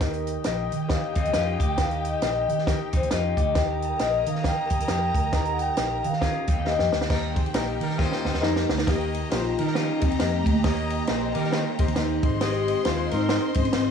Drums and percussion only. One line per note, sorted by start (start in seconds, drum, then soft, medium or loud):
0.01 kick loud
0.01 snare loud
0.01 closed hi-hat loud
0.14 closed hi-hat soft
0.27 closed hi-hat medium
0.44 snare loud
0.44 closed hi-hat medium
0.72 closed hi-hat medium
0.89 kick loud
0.89 snare loud
0.89 closed hi-hat medium
1.15 kick medium
1.15 closed hi-hat medium
1.25 closed hi-hat medium
1.33 snare loud
1.33 closed hi-hat medium
1.60 kick medium
1.60 closed hi-hat medium
1.78 kick loud
1.78 snare loud
1.78 closed hi-hat medium
1.91 closed hi-hat soft
2.05 closed hi-hat medium
2.22 snare loud
2.22 closed hi-hat medium
2.49 closed hi-hat medium
2.58 snare soft
2.67 kick medium
2.67 snare loud
2.67 closed hi-hat medium
2.93 kick medium
2.93 closed hi-hat medium
3.03 closed hi-hat medium
3.11 snare loud
3.11 closed hi-hat medium
3.37 kick medium
3.37 closed hi-hat medium
3.55 kick loud
3.55 snare loud
3.55 closed hi-hat medium
3.82 closed hi-hat medium
3.99 snare loud
3.99 closed hi-hat medium
4.26 closed hi-hat medium
4.35 snare soft
4.44 kick medium
4.44 snare loud
4.44 closed hi-hat medium
4.70 kick medium
4.70 closed hi-hat medium
4.80 closed hi-hat medium
4.88 snare loud
4.88 closed hi-hat loud
5.14 kick medium
5.14 closed hi-hat medium
5.33 kick loud
5.33 snare loud
5.33 closed hi-hat medium
5.45 closed hi-hat soft
5.59 closed hi-hat medium
5.77 snare loud
5.77 closed hi-hat medium
6.04 closed hi-hat medium
6.13 snare soft
6.22 kick medium
6.22 snare loud
6.22 closed hi-hat medium
6.47 kick medium
6.47 closed hi-hat medium
6.66 snare medium
6.79 snare medium
6.92 snare medium
7.01 snare medium
7.10 kick loud
7.10 snare loud
7.10 crash loud
7.36 kick loud
7.36 ride medium
7.46 ride soft
7.54 snare loud
7.54 ride medium
7.81 ride medium
7.90 snare soft
7.99 kick medium
7.99 snare medium
8.12 snare medium
8.25 snare medium
8.34 snare medium
8.43 snare loud
8.56 snare medium
8.69 snare loud
8.78 snare loud
8.87 kick loud
8.87 snare loud
8.87 ride medium
9.01 ride soft
9.14 ride medium
9.31 snare loud
9.31 ride medium
9.59 ride medium
9.67 snare soft
9.75 snare loud
9.75 ride medium
10.01 kick medium
10.01 ride medium
10.12 ride soft
10.20 snare loud
10.20 ride medium
10.46 kick medium
10.46 ride medium
10.64 kick loud
10.64 snare loud
10.64 ride medium
10.77 ride soft
10.90 ride medium
11.07 snare loud
11.07 ride medium
11.35 ride medium
11.44 snare soft
11.52 snare loud
11.52 ride medium
11.79 kick medium
11.79 ride medium
11.88 ride medium
11.96 snare loud
11.96 ride medium
12.23 kick loud
12.23 ride medium
12.41 snare loud
12.41 ride medium
12.54 ride soft
12.68 ride medium
12.85 snare loud
12.85 ride medium
13.11 ride medium
13.29 snare loud
13.29 ride medium
13.54 kick loud
13.54 ride medium
13.65 ride soft
13.73 snare loud
13.73 ride medium